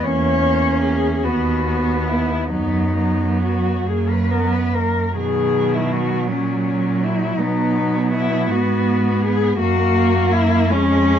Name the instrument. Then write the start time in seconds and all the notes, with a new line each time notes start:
cello
0.04 E2 A#3 C#4 C#5
0.43 A#3
0.83 G#4
1.23 D#2 B3 F#4
1.67 B3
2.08 E4
2.51 F#2 F#3 B3 D#4
2.98 B3
3.42 F#4
3.86 F#2 A#3 G#4
4.10 B4
4.31 B3 A#4
4.52 B4
4.73 A#3 A#4
5.15 B2 D#3 F#3 G#4
5.73 E4
5.92 F#4
6.28 A#2 F#3 C#4
7.03 E4
7.40 B2 F#3 B3 D#4
8.13 E4
8.50 G#2 B3 F#4
9.22 G#4
9.59 F#2 A#3 F#4
10.32 E4
10.71 F2 G#3 C#4